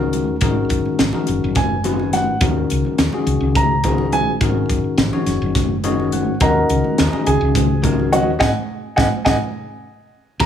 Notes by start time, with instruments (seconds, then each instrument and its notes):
Already playing: fretless electric bass C#2, tine electric piano D#3 G#3 C#4 F#4 A#4
0.00 low conga
0.13 closed hi-hat, high conga
0.28 fretless electric bass D#2
0.41 fretless electric bass G#1, tine electric piano D#3 G#3 C#4 F#4 A#4, kick, closed hi-hat, muted conga
0.69 fretless electric bass F#1, kick, closed hi-hat
0.85 muted fretless electric bass stroke, high conga
0.99 fretless electric bass G#1, snare, closed hi-hat, low conga
1.13 tine electric piano D#3 G#3 C#4 F#4 A#4, muted fretless electric bass stroke, muted conga, low conga
1.27 fretless electric bass F#1, closed hi-hat, low conga
1.44 fretless electric bass F#1
1.55 grand piano G#5, kick, snare, closed hi-hat, high conga
1.84 tine electric piano D#3 G#3 C#4 F#4 B4, closed hi-hat, muted conga
1.99 low conga
2.13 grand piano F#5, snare, closed hi-hat, high conga
2.28 fretless electric bass G#1
2.41 fretless electric bass D#2, tine electric piano D#3 G#3 C#4 F#4 A#4, kick, closed hi-hat, muted conga
2.70 fretless electric bass C#2, closed hi-hat
2.85 muted fretless electric bass stroke, high conga, low conga
2.98 fretless electric bass D#2, snare, closed hi-hat, low conga
3.13 tine electric piano D#3 G#3 C#4 F#4 G#4, muted fretless electric bass stroke, muted conga
3.27 fretless electric bass C#2, closed hi-hat, low conga
3.40 fretless electric bass C#2, low conga
3.55 grand piano A#5, kick, closed hi-hat, high conga
3.84 tine electric piano D#3 G#3 C#4 F#4 G#4, kick, closed hi-hat, muted conga
3.98 low conga
4.12 grand piano G#5, closed hi-hat, high conga
4.25 fretless electric bass A#1
4.41 fretless electric bass G#1, tine electric piano D#3 G#3 C#4 F#4 A#4, kick, closed hi-hat, muted conga
4.70 fretless electric bass F#1, kick, closed hi-hat
4.84 muted fretless electric bass stroke
4.98 fretless electric bass G#1, snare, closed hi-hat, low conga
5.13 tine electric piano D#3 G#3 C#4 F#4 C#5, muted fretless electric bass stroke, muted conga
5.26 fretless electric bass F#1, snare, closed hi-hat, low conga
5.42 fretless electric bass F#1, low conga
5.55 kick, snare, closed hi-hat, high conga
5.84 tine electric piano D#3 G#3 C#4 F#4 C#5 D#5, closed hi-hat, muted conga
6.00 low conga
6.12 tine electric piano F#5, closed hi-hat, high conga
6.27 fretless electric bass G#1
6.40 fretless electric bass D#2, tine electric piano D#3 G#3 C#4 F#4 A#4, grand piano A#4 D#5 F#5 A#5, kick, closed hi-hat, muted conga
6.69 fretless electric bass C#2, closed hi-hat
6.84 muted fretless electric bass stroke, high conga, low conga
6.98 fretless electric bass D#2, snare, closed hi-hat, low conga
7.12 tine electric piano D#3 G#3 C#4 F#4 G#4, muted fretless electric bass stroke, muted conga
7.26 fretless electric bass C#2, grand piano G#4 G#5, closed hi-hat, low conga
7.41 fretless electric bass C#2, low conga
7.55 kick, closed hi-hat, high conga
7.82 tine electric piano D#3 G#3 C#4 F#4 A#4, kick, closed hi-hat, muted conga
8.00 low conga
8.12 grand piano F#4 C#5 D#5 F#5, closed hi-hat, high conga
8.26 fretless electric bass D#2
8.39 fretless electric bass G#1, tine electric piano G#3 B3 D#4, grand piano D#5 F#5 G#5, kick, snare, high conga
8.96 fretless electric bass G#1, tine electric piano G#3 B3 D#4, grand piano D#5 F#5 G#5, kick, snare, high conga
9.25 fretless electric bass G#1, tine electric piano G#3 B3 D#4, grand piano D#5 F#5 G#5, kick, snare, high conga
10.40 fretless electric bass D#2, tine electric piano D#3 G#3 C#4 F#4 A#4, grand piano A#5, kick, crash, muted conga